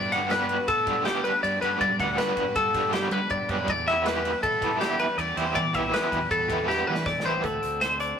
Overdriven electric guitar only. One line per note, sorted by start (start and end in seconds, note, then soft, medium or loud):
0.12 0.30 G3 medium
0.12 0.30 B3 medium
0.12 0.30 D4 medium
0.12 0.31 G4 medium
0.31 0.55 G3 medium
0.31 0.55 B3 medium
0.31 0.56 D4 medium
0.31 0.56 G4 medium
0.87 1.05 G3 medium
0.87 1.06 B3 medium
0.87 1.06 D4 medium
0.87 1.06 G4 loud
1.06 1.30 G3 medium
1.06 1.31 B3 medium
1.06 1.31 D4 medium
1.06 1.31 G4 medium
1.62 1.87 G3 medium
1.62 1.87 B3 medium
1.62 1.87 D4 medium
1.62 1.87 G4 medium
1.99 2.16 G3 medium
1.99 2.17 B3 medium
1.99 2.17 D4 medium
1.99 2.18 G4 medium
2.18 2.42 G3 medium
2.18 2.43 B3 medium
2.18 2.43 D4 medium
2.18 2.43 G4 medium
2.74 2.92 G3 medium
2.74 2.93 B3 medium
2.74 2.93 D4 loud
2.74 2.93 G4 medium
2.93 3.18 G3 medium
2.93 3.18 B3 medium
2.93 3.18 D4 medium
2.93 3.18 G4 medium
3.50 3.69 G3 medium
3.50 3.69 B3 medium
3.50 3.69 D4 medium
3.50 3.68 G4 medium
3.87 4.05 E3 medium
3.87 4.06 B3 medium
3.87 4.06 E4 medium
3.87 4.06 G4 medium
4.07 4.31 E3 medium
4.07 4.31 B3 medium
4.07 4.31 E4 medium
4.07 4.31 G4 loud
4.62 4.79 E3 medium
4.62 4.80 B3 medium
4.62 4.80 E4 medium
4.62 4.80 G4 medium
4.80 5.05 E3 medium
4.80 5.05 B3 medium
4.80 5.05 E4 medium
4.80 5.06 G4 medium
5.37 5.62 E3 medium
5.37 5.62 B3 medium
5.37 5.62 E4 medium
5.37 5.61 G4 loud
5.74 5.91 E3 medium
5.74 5.92 B3 medium
5.74 5.92 E4 medium
5.74 5.93 G4 loud
5.93 6.17 E3 medium
5.93 6.18 B3 medium
5.93 6.18 E4 medium
5.93 6.18 G4 medium
6.49 6.66 E3 medium
6.49 6.67 B3 medium
6.49 6.67 E4 medium
6.49 6.68 G4 loud
6.67 6.92 E3 medium
6.67 6.93 B3 medium
6.67 6.93 E4 medium
6.67 6.93 G4 medium
7.24 7.44 E3 medium
7.24 7.44 B3 medium
7.24 7.43 E4 medium
7.24 7.43 G4 loud